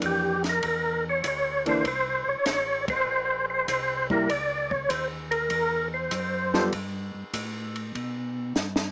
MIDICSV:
0, 0, Header, 1, 5, 480
1, 0, Start_track
1, 0, Tempo, 609756
1, 1454, Time_signature, 4, 2, 24, 8
1, 7019, End_track
2, 0, Start_track
2, 0, Title_t, "Tonewheel organ"
2, 0, Program_c, 0, 16
2, 46, Note_on_c, 0, 67, 84
2, 338, Note_off_c, 0, 67, 0
2, 388, Note_on_c, 0, 70, 80
2, 520, Note_off_c, 0, 70, 0
2, 534, Note_on_c, 0, 70, 79
2, 822, Note_off_c, 0, 70, 0
2, 861, Note_on_c, 0, 73, 77
2, 995, Note_off_c, 0, 73, 0
2, 1004, Note_on_c, 0, 73, 84
2, 1297, Note_off_c, 0, 73, 0
2, 1332, Note_on_c, 0, 72, 85
2, 1458, Note_off_c, 0, 72, 0
2, 1476, Note_on_c, 0, 72, 91
2, 1799, Note_on_c, 0, 73, 84
2, 1805, Note_off_c, 0, 72, 0
2, 1932, Note_off_c, 0, 73, 0
2, 1942, Note_on_c, 0, 73, 95
2, 2245, Note_off_c, 0, 73, 0
2, 2282, Note_on_c, 0, 72, 115
2, 2722, Note_off_c, 0, 72, 0
2, 2755, Note_on_c, 0, 72, 81
2, 2890, Note_off_c, 0, 72, 0
2, 2902, Note_on_c, 0, 72, 93
2, 3205, Note_off_c, 0, 72, 0
2, 3236, Note_on_c, 0, 70, 96
2, 3380, Note_on_c, 0, 74, 88
2, 3385, Note_off_c, 0, 70, 0
2, 3701, Note_on_c, 0, 73, 82
2, 3717, Note_off_c, 0, 74, 0
2, 3848, Note_on_c, 0, 72, 100
2, 3857, Note_off_c, 0, 73, 0
2, 3998, Note_off_c, 0, 72, 0
2, 4180, Note_on_c, 0, 70, 100
2, 4630, Note_off_c, 0, 70, 0
2, 4675, Note_on_c, 0, 72, 71
2, 5267, Note_off_c, 0, 72, 0
2, 7019, End_track
3, 0, Start_track
3, 0, Title_t, "Hollow-body jazz guitar"
3, 0, Program_c, 1, 26
3, 0, Note_on_c, 1, 52, 57
3, 0, Note_on_c, 1, 58, 70
3, 0, Note_on_c, 1, 62, 70
3, 277, Note_off_c, 1, 52, 0
3, 277, Note_off_c, 1, 58, 0
3, 280, Note_off_c, 1, 62, 0
3, 1306, Note_on_c, 1, 52, 56
3, 1314, Note_on_c, 1, 58, 62
3, 1317, Note_on_c, 1, 62, 66
3, 1440, Note_off_c, 1, 52, 0
3, 1444, Note_off_c, 1, 58, 0
3, 1446, Note_off_c, 1, 62, 0
3, 3227, Note_on_c, 1, 55, 59
3, 3232, Note_on_c, 1, 58, 62
3, 3233, Note_on_c, 1, 64, 69
3, 3361, Note_off_c, 1, 55, 0
3, 3363, Note_off_c, 1, 58, 0
3, 3364, Note_off_c, 1, 64, 0
3, 5148, Note_on_c, 1, 55, 66
3, 5150, Note_on_c, 1, 59, 65
3, 5153, Note_on_c, 1, 65, 77
3, 5153, Note_on_c, 1, 69, 68
3, 5281, Note_off_c, 1, 55, 0
3, 5282, Note_off_c, 1, 59, 0
3, 5283, Note_off_c, 1, 65, 0
3, 5283, Note_off_c, 1, 69, 0
3, 7019, End_track
4, 0, Start_track
4, 0, Title_t, "Tonewheel organ"
4, 0, Program_c, 2, 16
4, 13, Note_on_c, 2, 41, 101
4, 479, Note_off_c, 2, 41, 0
4, 496, Note_on_c, 2, 40, 79
4, 961, Note_off_c, 2, 40, 0
4, 978, Note_on_c, 2, 38, 74
4, 1442, Note_off_c, 2, 38, 0
4, 1457, Note_on_c, 2, 36, 83
4, 1763, Note_off_c, 2, 36, 0
4, 1784, Note_on_c, 2, 36, 46
4, 1859, Note_off_c, 2, 36, 0
4, 1935, Note_on_c, 2, 33, 88
4, 2400, Note_off_c, 2, 33, 0
4, 2411, Note_on_c, 2, 34, 88
4, 2879, Note_off_c, 2, 34, 0
4, 2896, Note_on_c, 2, 36, 87
4, 3361, Note_off_c, 2, 36, 0
4, 3379, Note_on_c, 2, 37, 83
4, 3842, Note_off_c, 2, 37, 0
4, 3856, Note_on_c, 2, 39, 92
4, 4321, Note_off_c, 2, 39, 0
4, 4333, Note_on_c, 2, 40, 91
4, 4799, Note_off_c, 2, 40, 0
4, 4813, Note_on_c, 2, 42, 84
4, 5279, Note_off_c, 2, 42, 0
4, 5295, Note_on_c, 2, 43, 90
4, 5601, Note_off_c, 2, 43, 0
4, 5622, Note_on_c, 2, 43, 43
4, 5697, Note_off_c, 2, 43, 0
4, 5772, Note_on_c, 2, 45, 92
4, 6237, Note_off_c, 2, 45, 0
4, 6255, Note_on_c, 2, 47, 78
4, 6718, Note_off_c, 2, 47, 0
4, 6730, Note_on_c, 2, 43, 77
4, 7019, Note_off_c, 2, 43, 0
4, 7019, End_track
5, 0, Start_track
5, 0, Title_t, "Drums"
5, 13, Note_on_c, 9, 44, 52
5, 13, Note_on_c, 9, 51, 68
5, 16, Note_on_c, 9, 36, 22
5, 92, Note_off_c, 9, 44, 0
5, 92, Note_off_c, 9, 51, 0
5, 95, Note_off_c, 9, 36, 0
5, 346, Note_on_c, 9, 51, 45
5, 348, Note_on_c, 9, 38, 30
5, 424, Note_off_c, 9, 51, 0
5, 427, Note_off_c, 9, 38, 0
5, 493, Note_on_c, 9, 51, 57
5, 497, Note_on_c, 9, 36, 22
5, 572, Note_off_c, 9, 51, 0
5, 575, Note_off_c, 9, 36, 0
5, 975, Note_on_c, 9, 44, 57
5, 975, Note_on_c, 9, 51, 67
5, 977, Note_on_c, 9, 36, 21
5, 1054, Note_off_c, 9, 44, 0
5, 1054, Note_off_c, 9, 51, 0
5, 1056, Note_off_c, 9, 36, 0
5, 1307, Note_on_c, 9, 51, 45
5, 1386, Note_off_c, 9, 51, 0
5, 1455, Note_on_c, 9, 51, 56
5, 1457, Note_on_c, 9, 36, 28
5, 1534, Note_off_c, 9, 51, 0
5, 1536, Note_off_c, 9, 36, 0
5, 1934, Note_on_c, 9, 44, 58
5, 1934, Note_on_c, 9, 51, 65
5, 1936, Note_on_c, 9, 38, 38
5, 1937, Note_on_c, 9, 36, 27
5, 2012, Note_off_c, 9, 44, 0
5, 2012, Note_off_c, 9, 51, 0
5, 2015, Note_off_c, 9, 36, 0
5, 2015, Note_off_c, 9, 38, 0
5, 2268, Note_on_c, 9, 36, 72
5, 2268, Note_on_c, 9, 51, 65
5, 2347, Note_off_c, 9, 36, 0
5, 2347, Note_off_c, 9, 51, 0
5, 2898, Note_on_c, 9, 36, 25
5, 2898, Note_on_c, 9, 44, 50
5, 2898, Note_on_c, 9, 51, 67
5, 2977, Note_off_c, 9, 36, 0
5, 2977, Note_off_c, 9, 44, 0
5, 2977, Note_off_c, 9, 51, 0
5, 3228, Note_on_c, 9, 36, 64
5, 3307, Note_off_c, 9, 36, 0
5, 3379, Note_on_c, 9, 36, 20
5, 3381, Note_on_c, 9, 51, 63
5, 3458, Note_off_c, 9, 36, 0
5, 3460, Note_off_c, 9, 51, 0
5, 3708, Note_on_c, 9, 36, 54
5, 3787, Note_off_c, 9, 36, 0
5, 3856, Note_on_c, 9, 44, 51
5, 3856, Note_on_c, 9, 51, 65
5, 3857, Note_on_c, 9, 36, 21
5, 3934, Note_off_c, 9, 44, 0
5, 3934, Note_off_c, 9, 51, 0
5, 3936, Note_off_c, 9, 36, 0
5, 4184, Note_on_c, 9, 51, 43
5, 4263, Note_off_c, 9, 51, 0
5, 4328, Note_on_c, 9, 51, 61
5, 4335, Note_on_c, 9, 36, 20
5, 4407, Note_off_c, 9, 51, 0
5, 4414, Note_off_c, 9, 36, 0
5, 4810, Note_on_c, 9, 44, 58
5, 4810, Note_on_c, 9, 51, 69
5, 4815, Note_on_c, 9, 36, 22
5, 4889, Note_off_c, 9, 44, 0
5, 4889, Note_off_c, 9, 51, 0
5, 4893, Note_off_c, 9, 36, 0
5, 5147, Note_on_c, 9, 38, 40
5, 5225, Note_off_c, 9, 38, 0
5, 5294, Note_on_c, 9, 51, 66
5, 5296, Note_on_c, 9, 36, 28
5, 5373, Note_off_c, 9, 51, 0
5, 5375, Note_off_c, 9, 36, 0
5, 5775, Note_on_c, 9, 36, 23
5, 5775, Note_on_c, 9, 44, 59
5, 5775, Note_on_c, 9, 51, 73
5, 5853, Note_off_c, 9, 44, 0
5, 5853, Note_off_c, 9, 51, 0
5, 5854, Note_off_c, 9, 36, 0
5, 6106, Note_on_c, 9, 51, 42
5, 6184, Note_off_c, 9, 51, 0
5, 6256, Note_on_c, 9, 36, 21
5, 6260, Note_on_c, 9, 51, 52
5, 6335, Note_off_c, 9, 36, 0
5, 6339, Note_off_c, 9, 51, 0
5, 6734, Note_on_c, 9, 44, 50
5, 6736, Note_on_c, 9, 38, 48
5, 6813, Note_off_c, 9, 44, 0
5, 6815, Note_off_c, 9, 38, 0
5, 6894, Note_on_c, 9, 38, 57
5, 6973, Note_off_c, 9, 38, 0
5, 7019, End_track
0, 0, End_of_file